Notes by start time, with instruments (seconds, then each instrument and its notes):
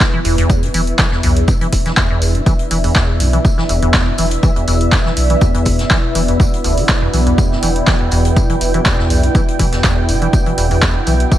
Already playing: analog synth pad B2 B3 E4 E5, ambient pad E4 B4 D5
0.00 kick, snare, clap, closed hi-hat, tambourine
0.14 acid bass E3
0.25 sub bass E1, acid bass E2, open hi-hat, tambourine
0.38 acid bass E2, closed hi-hat
0.50 kick, closed hi-hat, tambourine
0.63 acid bass G2, closed hi-hat
0.74 sub bass E1, acid bass E3, open hi-hat, tambourine
0.87 closed hi-hat
0.98 acid bass E3, kick, snare, clap, closed hi-hat, tambourine
1.12 acid bass E2, snare
1.23 sub bass B1, acid bass E2, open hi-hat, tambourine
1.37 closed hi-hat
1.48 acid bass G2, kick, closed hi-hat, tambourine
1.61 acid bass E3, closed hi-hat
1.73 sub bass E1, kick, open hi-hat, tambourine
1.86 acid bass E3, snare, closed hi-hat
1.96 acid bass E2, kick, snare, clap, closed hi-hat, tambourine
2.10 acid bass E2
2.22 sub bass E1, open hi-hat, tambourine
2.35 acid bass G2, closed hi-hat
2.46 acid bass E3, kick, closed hi-hat, tambourine
2.59 closed hi-hat
2.71 sub bass E1, acid bass E3, open hi-hat, tambourine
2.84 acid bass E2, open hi-hat
2.95 acid bass E2, kick, snare, clap, closed hi-hat, tambourine
3.20 sub bass B1, acid bass G2, open hi-hat, tambourine
3.33 acid bass E3, closed hi-hat
3.45 kick, closed hi-hat, tambourine
3.58 acid bass E3, snare
3.69 sub bass E1, acid bass E2, open hi-hat, tambourine
3.82 acid bass E2, closed hi-hat
3.94 kick, snare, clap, closed hi-hat, tambourine
4.07 acid bass G2
4.18 sub bass E1, acid bass E3, open hi-hat, tambourine
4.31 closed hi-hat
4.43 acid bass E3, kick, closed hi-hat, tambourine
4.56 acid bass E2, closed hi-hat
4.68 sub bass E1, acid bass E2, open hi-hat, tambourine
4.81 closed hi-hat
4.92 acid bass G2, kick, snare, clap, closed hi-hat, tambourine
5.05 acid bass E3, snare
5.17 sub bass B1, open hi-hat, tambourine
5.30 acid bass E3, closed hi-hat
5.41 acid bass E2, kick, closed hi-hat, tambourine
5.54 acid bass E2, closed hi-hat
5.65 sub bass E1, kick, open hi-hat, tambourine
5.79 acid bass G2, snare, closed hi-hat
5.90 acid bass E3, kick, snare, clap, closed hi-hat, tambourine
6.15 sub bass E1, acid bass E3, open hi-hat, tambourine
6.28 acid bass E2, closed hi-hat
6.40 acid bass E2, kick, closed hi-hat, tambourine
6.54 closed hi-hat
6.64 sub bass E1, acid bass D2, open hi-hat, tambourine
6.78 acid bass E3, open hi-hat
6.89 kick, snare, clap, closed hi-hat, tambourine
7.02 acid bass E2
7.14 sub bass B1, acid bass E3, open hi-hat, tambourine
7.27 acid bass E2, closed hi-hat
7.38 analog synth pad G5, kick, closed hi-hat, tambourine
7.51 acid bass G2, snare
7.62 sub bass E1, acid bass E3, open hi-hat, tambourine
7.76 closed hi-hat
7.87 acid bass E3, kick, snare, clap, closed hi-hat, tambourine
8.00 acid bass E2
8.11 sub bass E1, acid bass E2, open hi-hat, tambourine
8.25 closed hi-hat
8.36 acid bass G2, kick, closed hi-hat, tambourine
8.49 acid bass E3, closed hi-hat
8.61 sub bass E1, open hi-hat, tambourine
8.74 acid bass E3, closed hi-hat
8.85 acid bass E2, kick, snare, clap, closed hi-hat, tambourine
8.99 acid bass E2, snare
9.10 sub bass B1, open hi-hat, tambourine
9.23 acid bass G2, closed hi-hat
9.35 acid bass E3, kick, closed hi-hat, tambourine
9.48 closed hi-hat
9.59 sub bass E1, acid bass E3, kick, open hi-hat, tambourine
9.72 acid bass E2, snare, closed hi-hat
9.84 acid bass E2, kick, snare, clap, closed hi-hat, tambourine
10.09 sub bass E1, acid bass G2, open hi-hat, tambourine
10.22 acid bass E3, closed hi-hat
10.33 kick, closed hi-hat, tambourine
10.46 acid bass E3, closed hi-hat
10.58 sub bass E1, acid bass E2, open hi-hat, tambourine
10.71 acid bass E2, open hi-hat
10.82 kick, snare, clap, closed hi-hat, tambourine
10.96 acid bass G2
11.07 sub bass B1, acid bass E3, open hi-hat, tambourine
11.20 closed hi-hat
11.32 acid bass E3, kick, closed hi-hat, tambourine